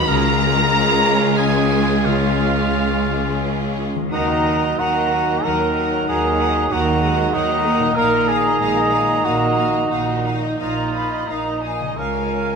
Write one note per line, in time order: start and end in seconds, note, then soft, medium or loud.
0.00 0.13 D#3 medium
0.00 0.10 F#3 medium
0.00 0.13 F#3 medium
0.00 0.12 A#3 medium
0.00 0.13 D#4 medium
0.00 0.10 F#4 medium
0.00 0.12 F#4 medium
0.00 0.12 D#5 medium
0.00 0.13 F#5 medium
0.08 3.86 C#2 medium
0.08 3.87 C#2 medium
0.08 2.03 C#3 medium
0.08 3.87 G#3 medium
0.08 3.74 G#3 loud
0.08 3.74 C#4 medium
0.08 3.87 C#4 medium
0.08 3.87 F4 medium
0.08 3.87 G#4 medium
0.08 1.38 A#4 medium
0.08 1.38 A#5 loud
0.25 1.87 G#3 medium
0.41 2.21 C#4 medium
0.57 1.70 F4 medium
0.73 2.73 G#4 medium
0.89 1.53 C#5 medium
1.06 1.37 F5 medium
1.22 3.24 G#5 medium
1.38 2.07 G#4 medium
1.38 3.07 F5 medium
1.38 2.05 G#5 loud
1.54 2.90 C#5 medium
1.71 2.55 F4 medium
1.88 2.38 G#3 medium
2.05 4.14 C#3 medium
2.05 3.77 F4 medium
2.05 3.77 F5 medium
2.22 4.14 C#4 soft
2.40 3.95 G#3 medium
2.56 3.77 F4 medium
2.74 4.14 G#4 medium
2.92 3.59 C#5 medium
3.09 3.42 F5 medium
3.26 4.15 G#5 medium
3.43 4.15 F5 soft
3.60 4.15 C#5 medium
3.78 4.15 F4 soft
3.95 7.85 D#3 medium
3.95 4.15 G#3 soft
4.00 7.82 A#3 medium
4.04 7.87 D#4 medium
4.08 4.71 D#3 medium
4.08 7.92 F#3 medium
4.08 7.92 D#4 medium
4.08 7.97 F#4 medium
4.08 4.75 F#5 medium
4.08 4.75 A#5 medium
4.08 4.27 D#6 medium
4.13 4.71 D#2 medium
4.13 4.81 D#4 medium
4.13 4.28 A#4 medium
4.13 4.28 F#5 medium
4.29 4.46 D#5 medium
4.29 4.46 A#5 medium
4.45 4.62 A#4 medium
4.45 4.62 F#5 medium
4.45 4.63 D#6 medium
4.63 4.79 D#5 medium
4.63 4.79 A#5 soft
4.78 5.37 D#2 medium
4.78 5.36 D#3 medium
4.78 5.40 A#3 medium
4.78 5.46 F#4 medium
4.78 4.95 A#4 soft
4.78 5.43 F#5 medium
4.78 4.95 F#5 medium
4.78 5.43 A#5 medium
4.78 4.95 D#6 medium
4.96 5.12 D#5 medium
4.96 5.12 A#5 medium
5.12 5.28 A#4 soft
5.12 5.28 F#5 medium
5.12 5.29 D#6 medium
5.27 5.44 D#5 medium
5.27 5.44 A#5 soft
5.44 6.00 D#2 medium
5.44 6.00 D#3 medium
5.44 5.75 F#3 medium
5.44 6.08 A#4 medium
5.44 5.59 A#4 medium
5.44 5.59 F#5 medium
5.44 6.68 F#5 medium
5.44 6.69 A#5 medium
5.44 5.59 D#6 soft
5.61 5.76 D#5 medium
5.61 5.76 A#5 medium
5.75 6.07 F#3 medium
5.75 5.93 A#4 medium
5.75 5.92 F#5 medium
5.75 5.92 D#6 medium
5.91 6.08 D#5 medium
5.91 6.07 A#5 medium
6.07 6.64 D#2 medium
6.07 6.63 D#3 medium
6.07 6.71 F#3 medium
6.07 6.74 G#4 medium
6.07 6.22 A#4 medium
6.07 6.22 F#5 medium
6.07 6.22 D#6 medium
6.23 6.39 D#5 soft
6.23 6.39 A#5 medium
6.38 6.55 A#4 medium
6.38 6.55 F#5 medium
6.38 6.55 D#6 medium
6.54 6.71 D#5 medium
6.54 6.70 A#5 medium
6.68 7.26 D#2 medium
6.68 7.26 D#3 medium
6.68 7.03 A#3 medium
6.68 6.86 A#4 medium
6.68 7.32 F#5 medium
6.68 6.86 F#5 medium
6.68 7.31 A#5 medium
6.68 6.84 D#6 medium
6.73 7.35 F#4 medium
6.84 7.03 D#5 medium
6.84 7.01 A#5 medium
7.01 7.33 G#3 medium
7.01 7.18 A#4 medium
7.01 7.18 F#5 medium
7.01 7.17 D#6 medium
7.17 7.34 D#5 medium
7.17 7.33 A#5 medium
7.32 7.89 D#2 medium
7.32 7.89 D#3 medium
7.32 7.65 F#3 medium
7.32 7.96 D#4 loud
7.32 7.48 A#4 medium
7.32 7.97 F#5 medium
7.32 7.48 F#5 medium
7.32 7.94 A#5 medium
7.32 7.47 D#6 medium
7.48 7.66 D#5 medium
7.48 7.64 A#5 medium
7.63 8.60 A#3 medium
7.63 7.82 A#4 medium
7.63 7.81 F#5 medium
7.63 7.80 D#6 medium
7.78 11.68 A#2 medium
7.78 7.97 D#5 medium
7.78 7.96 A#5 medium
7.83 11.73 A#3 medium
7.88 11.78 D#4 medium
7.92 8.52 A#2 medium
7.92 10.55 D#3 medium
7.92 10.55 D#4 medium
7.92 10.29 D#5 medium
7.92 11.82 F5 medium
7.92 10.29 A#5 medium
7.96 8.53 A#1 medium
7.96 8.30 A#4 loud
7.96 8.12 F5 medium
7.96 8.11 D#6 medium
8.11 8.29 D#5 medium
8.11 8.27 A#5 medium
8.28 9.26 G#4 loud
8.28 8.45 F5 medium
8.28 8.44 D#6 medium
8.43 8.61 D#5 medium
8.43 8.60 A#5 medium
8.60 9.17 A#1 medium
8.60 9.16 A#2 medium
8.60 9.23 G#3 medium
8.60 8.76 F5 medium
8.60 8.75 D#6 medium
8.75 8.93 D#5 medium
8.75 8.92 A#5 medium
8.91 9.08 F5 medium
8.91 9.08 D#6 medium
9.08 9.25 D#5 medium
9.08 9.24 A#5 medium
9.24 9.83 A#1 medium
9.24 9.82 A#2 medium
9.24 9.91 A#3 medium
9.24 9.90 F#4 medium
9.24 9.40 F5 medium
9.24 9.40 D#6 medium
9.41 9.57 D#5 medium
9.41 9.57 A#5 medium
9.57 9.74 F5 medium
9.57 9.74 D#6 medium
9.74 9.91 D#5 soft
9.74 9.91 A#5 soft
9.90 10.51 A#1 medium
9.90 10.51 A#2 medium
9.90 11.60 D#4 medium
9.90 10.34 F#4 medium
9.90 10.07 F5 medium
9.90 10.07 D#6 medium
10.07 10.25 D#5 soft
10.07 10.25 A#5 soft
10.25 10.43 F5 soft
10.25 10.42 D#6 soft
10.42 10.59 D#5 soft
10.42 10.59 A#5 soft
10.59 11.20 A#1 medium
10.59 11.19 A#2 medium
10.59 11.26 F3 medium
10.59 11.26 D#4 soft
10.59 11.30 F4 medium
10.59 11.23 D#5 medium
10.59 10.76 F5 soft
10.59 10.92 A#5 medium
10.59 10.75 D#6 medium
10.76 10.94 D#5 soft
10.76 10.93 A#5 soft
10.92 11.11 F5 soft
10.92 11.27 B5 medium
10.92 11.10 D#6 soft
11.10 11.29 D#5 soft
11.10 11.27 A#5 soft
11.27 11.90 A#1 medium
11.27 11.89 A#2 medium
11.27 11.62 F3 medium
11.27 11.62 D#4 soft
11.27 11.99 D#4 medium
11.27 11.63 D#5 medium
11.27 11.45 F5 soft
11.27 11.62 A#5 medium
11.27 11.43 D#6 soft
11.43 11.64 D#5 soft
11.43 11.62 A#5 soft
11.61 11.82 F5 soft
11.61 11.98 G#5 medium
11.61 11.79 D#6 soft
11.79 12.56 C#3 medium
11.79 11.99 D#5 soft
11.79 11.97 A#5 soft
11.85 12.56 G#3 soft
11.89 12.56 C#4 soft
11.94 12.56 C#2 medium
11.94 12.56 F4 soft
11.94 12.56 A#4 medium
11.94 12.56 F5 medium
11.94 12.13 C#6 soft
11.99 12.56 G#3 medium
11.99 12.56 F4 medium
11.99 12.14 C#5 soft
11.99 12.14 F5 soft
11.99 12.56 G#5 medium
12.13 12.32 C#5 soft
12.13 12.32 F5 soft
12.13 12.31 G#5 soft
12.30 12.48 C#5 soft
12.30 12.48 F5 soft
12.30 12.47 C#6 soft
12.46 12.56 C#5 soft
12.46 12.56 F5 soft
12.46 12.56 G#5 soft